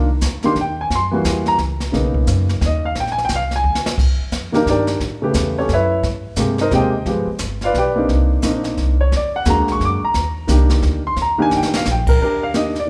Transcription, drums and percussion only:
0.21 kick, snare, hi-hat pedal
0.43 snare
0.56 kick, snare
0.90 brush sweep, kick, snare
1.25 kick, snare, hi-hat pedal
1.46 snare
1.58 kick, snare
1.80 snare
1.93 brush sweep, kick, snare
2.14 kick
2.27 kick, snare, hi-hat pedal
2.49 snare
2.61 kick, snare
2.95 brush sweep, kick, snare
3.07 snare
3.18 snare
3.29 kick, snare, hi-hat pedal
3.51 snare
3.75 snare
3.86 snare
3.98 brush sweep, kick, snare, crash
4.32 kick, snare, hi-hat pedal
4.54 snare
4.66 kick, snare
4.87 snare
5.00 brush sweep, kick, snare
5.34 kick, snare, hi-hat pedal
5.69 kick, snare
6.03 brush sweep, kick, snare
6.36 kick, snare, hi-hat pedal
6.58 snare
6.71 kick, snare
7.06 brush sweep, kick, snare
7.39 kick, snare, hi-hat pedal
7.61 snare
7.74 kick, snare
8.09 brush sweep, kick, snare
8.42 kick, snare, hi-hat pedal
8.64 snare
8.77 kick, snare
9.12 brush sweep, kick, snare
9.45 kick, snare, hi-hat pedal
9.68 snare
9.80 kick, snare
10.14 brush sweep, kick, snare
10.48 kick, snare, hi-hat pedal
10.70 snare
10.82 kick, snare
11.16 brush sweep, kick, snare
11.51 snare
11.63 snare
11.74 snare
11.85 snare, hi-hat pedal
12.07 kick, crash
12.20 brush sweep, kick
12.54 snare, hi-hat pedal
12.75 snare

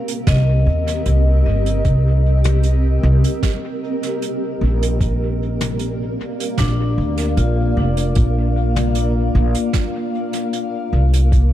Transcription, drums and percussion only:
0.08 closed hi-hat
0.27 kick, snare, closed hi-hat
0.88 closed hi-hat
1.06 closed hi-hat
1.66 closed hi-hat
1.85 kick, closed hi-hat
2.44 closed hi-hat, mid tom
2.63 closed hi-hat
3.24 closed hi-hat
3.43 kick, snare, closed hi-hat
4.03 closed hi-hat
4.22 closed hi-hat
4.83 closed hi-hat
5.01 kick, closed hi-hat
5.61 closed hi-hat, mid tom
5.79 closed hi-hat
6.40 closed hi-hat
6.58 kick, snare, closed hi-hat
7.18 closed hi-hat
7.37 closed hi-hat
7.97 closed hi-hat
8.15 kick, closed hi-hat
8.76 closed hi-hat, mid tom
8.95 closed hi-hat
9.55 closed hi-hat
9.73 kick, snare, closed hi-hat
10.33 closed hi-hat
10.53 closed hi-hat
11.13 closed hi-hat
11.32 kick, closed hi-hat

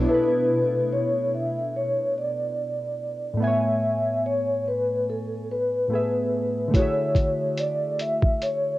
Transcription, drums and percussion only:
6.74 kick, closed hi-hat
7.15 kick, closed hi-hat
7.57 closed hi-hat
7.99 closed hi-hat
8.22 kick
8.42 closed hi-hat

